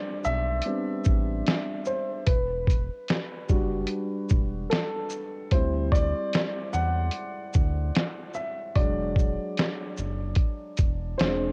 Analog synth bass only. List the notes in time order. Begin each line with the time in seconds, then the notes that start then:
0.26 B1
1.07 A1
2.28 E1
3.50 F#1
4.31 E1
5.52 D2
6.74 E2
7.55 D2
8.76 E1
9.98 F#1
10.80 E1
11.20 E1